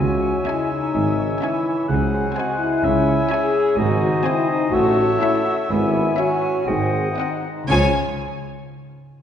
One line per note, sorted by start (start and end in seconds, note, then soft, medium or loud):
0.00 0.36 C#2 medium
0.00 0.37 C#3 medium
0.00 1.89 C#3 medium
0.00 0.43 C#4 medium
0.00 0.43 F#4 medium
0.00 1.86 C#5 medium
0.00 1.86 E5 medium
0.00 0.57 G#5 soft
0.00 1.62 G#5 medium
0.09 1.06 E4 soft
0.21 0.81 C#5 soft
0.34 0.69 E5 soft
0.45 0.94 G#3 medium
0.45 0.81 C#4 medium
0.45 0.82 E5 medium
0.45 0.82 G#5 medium
0.45 1.40 C#6 soft
0.49 0.72 E4 medium
0.59 1.52 G#5 soft
0.70 1.42 D#4 medium
0.70 1.29 E5 soft
0.82 1.18 C#5 soft
0.94 1.32 G#1 medium
0.94 1.33 G#2 medium
0.94 1.44 G#3 medium
0.94 4.75 G#3 soft
1.07 1.92 E4 soft
1.19 1.77 C#5 soft
1.30 1.64 E5 soft
1.41 1.92 E3 medium
1.41 1.77 C#4 medium
1.41 1.89 E4 medium
1.41 1.78 E5 medium
1.41 1.77 G#5 medium
1.41 1.91 C#6 soft
1.54 2.48 G#5 soft
1.65 1.91 E5 soft
1.79 1.92 C#5 soft
1.88 2.27 C#2 medium
1.88 2.27 C#3 medium
1.88 2.83 C#3 medium
1.88 2.37 F#3 medium
1.88 2.35 G#4 medium
1.88 2.86 C5 medium
1.88 2.86 F#5 medium
1.88 4.76 G#5 medium
2.02 2.86 F#4 soft
2.14 2.71 C5 soft
2.26 2.59 F#5 soft
2.35 2.83 G#3 medium
2.35 2.71 C4 medium
2.35 2.61 F#4 medium
2.35 2.72 F#5 medium
2.35 2.72 G#5 medium
2.35 2.86 C6 soft
2.49 3.41 G#5 soft
2.59 3.29 E4 medium
2.59 2.86 F#5 soft
2.72 2.86 C5 soft
2.84 3.21 C#2 medium
2.84 3.80 C#3 medium
2.84 3.22 C#3 medium
2.84 3.80 C#4 medium
2.84 3.78 C#5 medium
2.84 3.78 E5 medium
2.96 3.80 E4 soft
3.07 3.65 C#5 medium
3.19 3.53 E5 soft
3.30 3.66 C#4 medium
3.30 3.78 G#4 medium
3.30 3.66 E5 medium
3.30 3.66 G#5 medium
3.30 3.80 C#6 medium
3.42 4.36 G#5 soft
3.55 3.80 E5 soft
3.66 3.80 C#5 soft
3.78 4.15 G#1 medium
3.78 4.16 G#1 medium
3.78 4.75 G#2 medium
3.78 4.16 G#2 medium
3.78 4.25 D#4 medium
3.78 4.25 F#4 medium
3.78 4.71 C5 medium
3.78 4.76 D#5 medium
3.90 4.75 D#4 soft
4.01 4.59 C5 medium
4.13 4.48 D#5 soft
4.24 4.60 C4 medium
4.24 4.72 C4 medium
4.24 4.50 E4 medium
4.24 4.61 D#5 medium
4.24 4.60 G#5 medium
4.24 4.74 C6 medium
4.37 4.75 G#5 soft
4.48 4.72 D#4 medium
4.48 4.75 D#5 soft
4.60 4.74 C5 medium
4.71 5.11 A1 medium
4.71 5.71 A2 medium
4.71 5.11 A2 medium
4.71 5.20 A3 medium
4.71 5.19 F#4 medium
4.71 6.35 C#5 medium
4.71 6.39 E5 medium
4.71 5.69 A5 medium
4.85 5.80 C#4 medium
4.96 5.43 C#5 medium
5.09 5.56 E4 soft
5.19 5.68 A3 medium
5.19 5.57 C#4 medium
5.19 5.44 E4 medium
5.19 5.58 C#5 medium
5.19 5.56 E5 medium
5.19 6.18 C#6 medium
5.33 6.29 E5 soft
5.44 5.55 F#4 medium
5.44 5.92 C#5 medium
5.57 6.05 E4 soft
5.69 6.07 G#1 medium
5.69 6.08 G#1 medium
5.69 6.65 G#2 medium
5.69 6.08 G#2 medium
5.69 6.17 B3 medium
5.69 6.17 E4 medium
5.69 6.69 G#5 medium
5.82 6.69 C#4 soft
5.94 6.41 C#5 soft
6.06 6.54 E4 medium
6.17 6.54 C#4 medium
6.17 6.66 C#4 medium
6.17 6.66 F#4 medium
6.17 6.54 C#5 medium
6.17 6.54 E5 medium
6.17 6.70 C#6 medium
6.30 6.69 E5 soft
6.43 6.69 C#5 soft
6.55 6.69 E4 soft
6.66 7.07 G#1 medium
6.66 7.71 G#2 medium
6.66 7.07 G#2 medium
6.66 7.16 C4 medium
6.66 7.09 G#4 medium
6.66 7.39 C5 medium
6.66 7.39 D#5 medium
6.66 7.44 F#5 medium
6.80 7.71 D#4 soft
6.93 7.56 C5 soft
7.06 7.43 D#5 soft
7.11 7.18 E4 soft
7.17 7.56 C4 soft
7.17 7.29 C4 soft
7.17 7.69 D#4 medium
7.17 7.56 D#5 medium
7.17 7.56 F#5 soft
7.17 7.71 C6 soft
7.31 7.71 F#5 soft
7.44 7.71 D#5 soft
7.57 7.71 C5 soft
7.63 7.97 C#3 medium
7.63 7.97 C#4 soft
7.69 7.90 C#2 medium
7.69 7.97 C#2 medium
7.69 7.98 C#3 medium
7.69 7.90 F3 medium
7.69 7.90 C#4 medium
7.69 7.97 F4 medium
7.69 7.91 G#4 medium
7.69 7.97 G#4 medium
7.69 7.90 C#5 medium
7.69 7.98 C#5 medium
7.69 7.97 G#5 medium
7.73 7.97 C#5 medium
7.73 7.97 G#5 medium